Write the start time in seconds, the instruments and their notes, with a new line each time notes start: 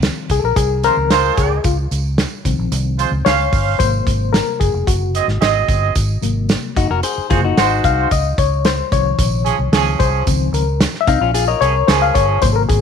Already playing: reed electric piano D#3 F3 C4
0.03 snare, closed hi-hat, tambourine
0.30 fingered electric bass C2, reed electric piano G#4, kick, closed hi-hat, tambourine
0.39 reed electric piano A4
0.43 fingered electric bass A#1, reed electric piano A#4
0.56 fingered electric bass C2, reed electric piano G#4, kick, closed hi-hat, tambourine
0.83 reed electric piano D#3 F3 C4 A#4, horn section G#3 F4 C5, closed hi-hat, tambourine
0.97 fingered electric bass C#2
1.10 horn section G#3 F4 C5, snare, closed hi-hat, tambourine
1.37 fingered electric bass C#2, reed electric piano G#4, kick, closed hi-hat, tambourine
1.64 fingered electric bass C#2, reed electric piano F4, kick, closed hi-hat, tambourine
1.91 fingered electric bass C#2, closed hi-hat, tambourine
2.18 snare, closed hi-hat, tambourine
2.45 fingered electric bass C2, reed electric piano D#3 F3 C4, kick, closed hi-hat, tambourine
2.59 fingered electric bass A#1
2.72 fingered electric bass C2, closed hi-hat, tambourine
2.99 horn section G#3 F4 C5, closed hi-hat, tambourine
3.12 fingered electric bass C#2
3.25 fingered electric bass C#2, horn section C#4 C5 F5, reed electric piano C#5, snare, closed hi-hat, tambourine
3.52 fingered electric bass G1, kick, open hi-hat, tambourine
3.78 fingered electric bass G#1, reed electric piano C3 F#3 A#3 C5, kick, closed hi-hat, tambourine
4.06 fingered electric bass G#1, kick, closed hi-hat, tambourine
4.33 reed electric piano A#4, snare, closed hi-hat, tambourine
4.60 fingered electric bass F#1, reed electric piano G#4, kick, closed hi-hat, tambourine
4.73 fingered electric bass F1
4.87 fingered electric bass F#1, reed electric piano F#4, kick, closed hi-hat, tambourine
5.15 horn section C4 G#4 D#5, closed hi-hat, tambourine
5.28 fingered electric bass G#1, snare
5.41 horn section C4 G#4 D#5, snare, closed hi-hat, tambourine
5.68 fingered electric bass G1, kick, closed hi-hat, tambourine
5.95 fingered electric bass G#1, kick, closed hi-hat, tambourine
6.22 fingered electric bass G#1, reed electric piano C3 F#3 A#3, closed hi-hat, tambourine
6.49 snare, closed hi-hat, tambourine
6.76 fingered electric bass F#1, clean electric guitar D#4 F#4, kick, closed hi-hat, tambourine
6.90 fingered electric bass F1, clean electric guitar F#4 A#4
7.03 clean electric guitar G#4 C5, closed hi-hat, tambourine
7.18 muted fingered electric bass stroke
7.30 fingered electric bass F#1, reed electric piano C3 F#3 A#3, horn section G#3 F#4 C5, clean electric guitar F4 G#4, kick, closed hi-hat, tambourine
7.44 clean electric guitar D#4 F#4
7.57 fingered electric bass G#1, horn section G#3 F#4 C5, reed electric piano F#5, snare, closed hi-hat, tambourine
7.84 fingered electric bass C2, reed electric piano F5, kick, closed hi-hat, tambourine
8.11 fingered electric bass C#2, reed electric piano D#5, kick, closed hi-hat, tambourine
8.38 fingered electric bass C#2, reed electric piano C#5, kick, closed hi-hat, tambourine
8.65 reed electric piano C5, snare, closed hi-hat, tambourine
8.91 fingered electric bass C2, reed electric piano C3 D#3 F3 C#5, kick, closed hi-hat, tambourine
9.18 fingered electric bass A#1, kick, closed hi-hat, tambourine
9.45 horn section F3 C#4 G#4, closed hi-hat, tambourine
9.59 fingered electric bass C2
9.72 fingered electric bass C#2, reed electric piano D#3 F3 C4, horn section F3 C#4 G#4, snare, closed hi-hat, tambourine
9.99 fingered electric bass C2, reed electric piano C5, kick, closed hi-hat, tambourine
10.26 fingered electric bass C#2, reed electric piano D#3 F3 C4, kick, closed hi-hat, tambourine
10.52 fingered electric bass C#2, reed electric piano A#4, closed hi-hat, tambourine
10.81 snare, closed hi-hat, tambourine
10.94 snare
11.01 reed electric piano E5
11.07 fingered electric bass C2, clean electric guitar C4 D#4, reed electric piano F5, kick, closed hi-hat, tambourine
11.21 fingered electric bass A#1, clean electric guitar C#4 F4
11.34 clean electric guitar F4 G#4, closed hi-hat, tambourine
11.48 clean electric guitar A#4 C#5, reed electric piano D#5
11.61 fingered electric bass C2, horn section F3 C#4 G#4, reed electric piano C#5, closed hi-hat, tambourine
11.88 fingered electric bass C#2, horn section F3 C#4 G#4, reed electric piano C5, snare, closed hi-hat, tambourine
12.02 reed electric piano F5
12.14 fingered electric bass G1, reed electric piano C#5, kick, closed hi-hat, tambourine
12.41 fingered electric bass G#1, reed electric piano C3 F#3 A#3 C5, kick, closed hi-hat, tambourine
12.53 reed electric piano A4 A#4
12.69 fingered electric bass G#1, reed electric piano G#4, kick, closed hi-hat, tambourine